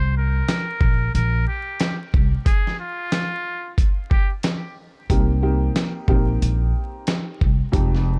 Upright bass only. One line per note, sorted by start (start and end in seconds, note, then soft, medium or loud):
0.00 0.40 C2 loud
0.81 1.10 A#1 medium
1.15 1.43 A#1 medium
2.14 2.32 C2 medium
5.10 5.67 C2 loud
6.08 6.37 A#1 medium
6.42 6.71 A#1 loud
7.41 7.59 C2 medium
7.74 8.19 F1 loud